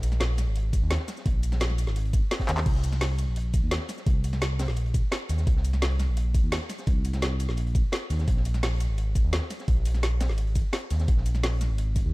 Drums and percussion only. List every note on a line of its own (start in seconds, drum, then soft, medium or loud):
0.03 closed hi-hat medium
0.03 ride medium
0.03 shaker medium
0.12 snare soft
0.12 shaker soft
0.20 snare loud
0.20 closed hi-hat loud
0.20 open hi-hat medium
0.20 shaker soft
0.38 snare soft
0.38 closed hi-hat medium
0.38 ride medium
0.38 shaker medium
0.56 closed hi-hat loud
0.56 closed hi-hat medium
0.73 kick loud
0.73 closed hi-hat medium
0.73 ride medium
0.73 shaker medium
0.91 snare loud
0.91 closed hi-hat loud
0.91 closed hi-hat medium
1.00 snare medium
1.08 snare soft
1.08 closed hi-hat medium
1.08 ride medium
1.08 shaker medium
1.17 snare soft
1.17 shaker soft
1.26 kick loud
1.26 closed hi-hat loud
1.26 closed hi-hat medium
1.43 closed hi-hat medium
1.43 ride medium
1.43 shaker medium
1.52 snare medium
1.52 snare soft
1.52 shaker soft
1.60 snare loud
1.60 closed hi-hat medium
1.60 closed hi-hat loud
1.60 shaker soft
1.70 snare soft
1.78 closed hi-hat medium
1.78 ride medium
1.78 shaker medium
1.87 snare soft
1.87 closed hi-hat soft
1.96 closed hi-hat loud
1.96 closed hi-hat medium
2.05 closed hi-hat soft
2.13 kick loud
2.13 closed hi-hat medium
2.13 ride medium
2.13 shaker medium
2.31 snare loud
2.31 closed hi-hat loud
2.31 open hi-hat medium
2.40 kick medium
2.40 snare loud
2.40 open hi-hat medium
2.48 snare loud
2.48 clap medium
2.48 closed hi-hat medium
2.48 open hi-hat medium
2.48 ride medium
2.48 shaker medium
2.57 snare loud
2.57 clap loud
2.57 open hi-hat medium
2.57 shaker soft
2.66 kick loud
2.66 closed hi-hat medium
2.66 closed hi-hat loud
2.66 crash medium
2.75 snare soft
2.84 closed hi-hat medium
2.84 ride medium
2.84 shaker medium
2.92 snare soft
2.92 shaker soft
3.01 snare loud
3.01 closed hi-hat loud
3.01 open hi-hat medium
3.01 shaker soft
3.19 closed hi-hat medium
3.19 ride medium
3.19 shaker medium
3.36 closed hi-hat loud
3.36 closed hi-hat medium
3.54 kick loud
3.54 closed hi-hat medium
3.54 ride medium
3.54 shaker medium
3.71 snare loud
3.71 closed hi-hat loud
3.71 closed hi-hat medium
3.80 snare medium
3.89 snare soft
3.89 closed hi-hat medium
3.89 ride medium
3.89 shaker medium
3.98 snare soft
3.98 shaker soft
4.06 kick loud
4.06 closed hi-hat medium
4.24 closed hi-hat medium
4.24 ride medium
4.24 shaker medium
4.33 snare soft
4.33 shaker soft
4.42 snare loud
4.42 closed hi-hat loud
4.42 closed hi-hat medium
4.42 shaker soft
4.59 snare loud
4.59 snare soft
4.59 closed hi-hat medium
4.59 open hi-hat medium
4.59 ride medium
4.59 shaker medium
4.68 snare soft
4.76 closed hi-hat medium
4.76 closed hi-hat loud
4.86 closed hi-hat soft
4.94 kick loud
4.94 closed hi-hat medium
4.94 ride medium
4.94 shaker medium
5.12 snare loud
5.12 closed hi-hat loud
5.29 snare soft
5.29 closed hi-hat medium
5.29 ride medium
5.29 shaker medium
5.38 snare soft
5.38 shaker soft
5.47 kick loud
5.47 closed hi-hat medium
5.47 closed hi-hat loud
5.57 snare soft
5.65 closed hi-hat medium
5.65 ride medium
5.65 shaker medium
5.73 snare soft
5.73 shaker soft
5.82 snare loud
5.82 closed hi-hat loud
5.82 open hi-hat medium
5.82 shaker soft
5.99 snare soft
5.99 closed hi-hat medium
5.99 ride medium
5.99 shaker medium
6.17 closed hi-hat medium
6.35 kick loud
6.35 closed hi-hat medium
6.35 ride medium
6.35 shaker medium
6.52 snare loud
6.52 closed hi-hat medium
6.52 closed hi-hat loud
6.61 snare medium
6.69 snare soft
6.69 closed hi-hat medium
6.69 ride medium
6.69 shaker medium
6.78 snare soft
6.78 shaker soft
6.87 kick loud
6.87 closed hi-hat medium
7.05 closed hi-hat medium
7.05 ride medium
7.05 shaker medium
7.14 snare medium
7.14 snare soft
7.14 shaker soft
7.22 snare loud
7.22 closed hi-hat medium
7.22 shaker soft
7.40 closed hi-hat medium
7.40 ride medium
7.40 shaker medium
7.49 snare soft
7.49 closed hi-hat soft
7.57 closed hi-hat medium
7.67 closed hi-hat soft
7.75 kick loud
7.75 closed hi-hat medium
7.75 ride medium
7.75 shaker medium
7.92 snare loud
7.92 closed hi-hat loud
7.92 closed hi-hat medium
8.10 snare soft
8.10 closed hi-hat medium
8.10 ride medium
8.10 shaker medium
8.19 snare medium
8.19 shaker soft
8.28 kick loud
8.28 closed hi-hat medium
8.37 snare soft
8.45 closed hi-hat medium
8.45 ride medium
8.45 shaker medium
8.54 snare soft
8.54 shaker soft
8.63 snare loud
8.63 closed hi-hat loud
8.63 open hi-hat medium
8.63 shaker soft
8.80 closed hi-hat medium
8.80 ride medium
8.80 shaker medium
8.98 closed hi-hat medium
9.15 kick loud
9.15 closed hi-hat medium
9.15 ride medium
9.15 shaker medium
9.33 snare loud
9.33 closed hi-hat medium
9.42 snare medium
9.50 snare soft
9.50 closed hi-hat medium
9.50 ride medium
9.50 shaker medium
9.59 snare soft
9.59 shaker soft
9.68 kick loud
9.68 closed hi-hat medium
9.85 closed hi-hat medium
9.85 ride medium
9.85 shaker medium
9.94 snare soft
9.94 shaker soft
10.03 snare loud
10.03 closed hi-hat medium
10.03 closed hi-hat loud
10.03 shaker soft
10.20 snare loud
10.20 snare soft
10.20 closed hi-hat medium
10.20 open hi-hat medium
10.20 ride medium
10.20 shaker medium
10.29 snare soft
10.38 closed hi-hat medium
10.38 closed hi-hat loud
10.47 closed hi-hat soft
10.55 kick loud
10.55 closed hi-hat medium
10.55 ride medium
10.55 shaker medium
10.73 snare loud
10.73 closed hi-hat medium
10.90 snare soft
10.90 closed hi-hat medium
10.90 ride medium
10.90 shaker medium
10.99 snare medium
10.99 shaker soft
11.08 kick loud
11.08 closed hi-hat medium
11.17 snare soft
11.26 closed hi-hat medium
11.26 ride medium
11.26 shaker medium
11.35 snare soft
11.35 shaker soft
11.43 snare loud
11.43 closed hi-hat loud
11.43 open hi-hat medium
11.43 shaker soft
11.61 snare soft
11.61 closed hi-hat medium
11.61 ride medium
11.61 shaker medium
11.78 closed hi-hat loud
11.78 closed hi-hat medium
11.96 kick loud
11.96 closed hi-hat medium
11.96 ride medium
11.96 shaker medium